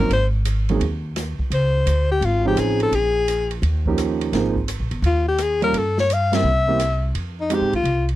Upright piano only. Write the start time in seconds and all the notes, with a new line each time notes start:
0.00 D#4 A#4
0.70 F#3 A#3 C4 D#4 G#4
2.45 F3 C4 C#4 D#4 G#4
3.87 F3 A#3 C#4 D#4 G4
4.33 F3 A#3 C4 D#4 G#4
5.62 G3 A#3 C#4 F4 A#4
6.32 G3 A#3 C4 E4 G4
6.68 G3 A#3 C4 E4 G4
7.50 G#3 C4 D#4 G4